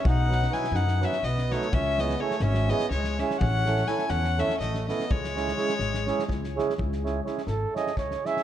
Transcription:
<<
  \new Staff \with { instrumentName = "Violin" } { \time 7/8 \key cis \minor \tempo 4 = 125 fis''4 gis''8 fis''8 e''8 dis''8 cis''8 | e''8 dis''8 cis''8 e''8 dis''8 cis''8 e''8 | fis''4 gis''8 fis''8 e''8 dis''8 dis''8 | cis''2. r8 |
r2. r8 | }
  \new Staff \with { instrumentName = "Accordion" } { \time 7/8 \key cis \minor r8 <fis b dis' fis'>8 <fis b dis' fis'>8 r8 <fis b dis' fis'>8 r8 <fis b dis' fis'>8 | r8 <gis cis' e' gis'>8 <gis cis' e' gis'>8 r8 <gis cis' e' gis'>8 r8 <gis cis' e' gis'>8 | r8 <a cis' e' a'>8 <a cis' e' a'>8 r8 <a cis' e' a'>8 r8 <a cis' e' a'>8 | r8 <gis cis' e' gis'>8 <gis cis' e' gis'>8 r8 <gis cis' e' gis'>8 r8 <gis cis' e' gis'>8 |
r8 <gis cis' e' gis'>8 <gis cis' e' gis'>8 r8 <gis cis' e' gis'>8 r8 <gis cis' e' gis'>8 | }
  \new Staff \with { instrumentName = "Trumpet" } { \time 7/8 \key cis \minor dis'4 e'8 dis'8 cis'8 b8 a8 | cis'8 b8 a8 cis'8 b8 gis8 cis'8 | cis'4 e'8 cis'8 cis'8 a8 b8 | gis2. r8 |
r4. a'8 dis''8 cis''8 e''8 | }
  \new Staff \with { instrumentName = "Upright bass" } { \clef bass \time 7/8 \key cis \minor b,,4. fis,4 b,,4 | cis,4. gis,,4 cis,4 | a,,4. e,4 a,,4 | cis,4. gis,,4 cis,4 |
cis,4. gis,,8 r8 cis,8 r8 | }
  \new DrumStaff \with { instrumentName = "Drums" } \drummode { \time 7/8 bd8 sn16 sn16 sn16 sn16 sn16 sn16 sn16 sn16 sn16 sn16 sn16 sn16 | bd8 sn16 sn8 sn16 sn16 sn16 sn16 sn16 sn16 sn16 sn16 sn16 | bd8 sn16 sn16 sn16 sn16 sn16 sn16 sn16 sn16 sn16 sn16 sn16 sn16 | bd16 sn16 sn16 sn16 sn16 sn16 sn16 sn16 sn16 sn16 <bd sn>16 sn16 sn16 sn16 |
bd16 sn16 sn8 sn16 sn16 sn8 sn16 sn16 <bd sn>16 sn16 sn16 sn16 | }
>>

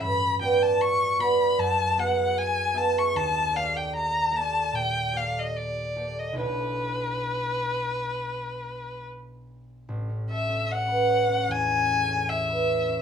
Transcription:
<<
  \new Staff \with { instrumentName = "Violin" } { \time 4/4 \key b \mixolydian \tempo 4 = 76 b''8 g''16 a''16 cis'''8 b''8 a''8 fis''8 gis''8 a''16 cis'''16 | a''8 f''16 g''16 ais''8 a''8 g''8 f''16 dis''16 d''8. dis''16 | b'2. r4 | r8 e''8 fis''4 gis''4 e''4 | }
  \new Staff \with { instrumentName = "Harp" } { \time 4/4 \key b \mixolydian g,8 <b fis' b' d''>4 <b fis' b' d''>8 fis,8 <b fis' gis' e''>4 <b fis' gis' e''>8 | dis,8 <ais g' a' d''>4 <ais g' a' d''>8 ais,8 <ais g' a' d''>4 <ais g' a' d''>8 | <b,, d' e' a' cis''>1 | a,,16 cis'16 a'16 cis'16 cis''16 b'16 cis''16 cis'16 e,16 cis'16 a'16 cis'16 cis''16 b'16 cis''16 cis'16 | }
>>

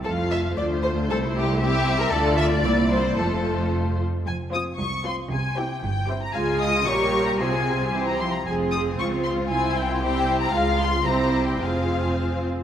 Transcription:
<<
  \new Staff \with { instrumentName = "Violin section" } { \time 2/4 \key f \major \tempo 4 = 114 f''4 c''4~ | c''4 e''4 | d''2 | c''4. r8 |
\key f \minor aes''8 ees'''8 des'''8 c'''8 | aes''8 g''8 g''8. bes''16 | aes''8 ees'''8 des'''8. bes''16 | aes''4 r16 bes''16 c'''16 bes''16 |
aes''8 ees'''8 des'''8 c'''8 | aes''8 g''8 g''8. bes''16 | f''8 c'''8 bes''8. g''16 | f''4. r8 | }
  \new Staff \with { instrumentName = "Violin section" } { \time 2/4 \key f \major << { a'8 e''8 d''8 c''8 | a'8 g'8 g'8. bes'16 | a'8 e''8 d''8 c''8 | a'4 r4 |
\key f \minor r8 c''8 r8 c''8 | r8 c''8 r8 c''8 | f''8 ees''8 des''4 | c''4 c''8 r8 |
c''2 | c''4 c''4 | f''4 c''4 | c''4. r8 | } \\ { r2 | r2 | r2 | r2 |
r8 f'8 r8 f'8 | r8 g'8 r8 g'8 | f'4 bes'4 | aes'4 g'8 r8 |
f'4 f'4~ | f'4 g'4 | f'4 g'4 | aes'4. r8 | } >> }
  \new Staff \with { instrumentName = "Viola section" } { \time 2/4 \key f \major << { f'4 f'4 | e'4 e'4 | f'4 e'4 | f'4. r8 |
\key f \minor r8 f'8 r8 f'8 | r8 e'8 r8 e'8 | f'4 g'4 | f'4 e'8 r8 |
aes'4 f'4 | e'4 e'4 | f'4 e'4 | f'4. r8 | } \\ { a4 a4~ | a4 c'4 | a4 bes4 | a4. r8 |
r8 c'8 r8 c'8 | r8 c'8 r8 c'8 | aes4 g4 | c'4 c'8 r8 |
c'2 | c'4 c'4 | aes4 c'4 | c'4. r8 | } >> }
  \new Staff \with { instrumentName = "Cello section" } { \clef bass \time 2/4 \key f \major f,4 d,4 | c,2 | d,4 c,4 | f,4. r8 |
\key f \minor f,4 c,4 | c4 g,4 | des4 bes,4 | c4 e8 f8 |
f,4 des,4 | c,2 | des,4 c,4 | f,4. r8 | }
  \new Staff \with { instrumentName = "Double bass section" } { \clef bass \time 2/4 \key f \major f,,4 d,4 | c,2 | d,4 c,4 | f,,4. r8 |
\key f \minor f,,4 c,4 | c,4 g,,4 | des,4 bes,,4 | c,4. r8 |
f,,4 des,4 | c,2 | des,4 c,4 | f,,4. r8 | }
>>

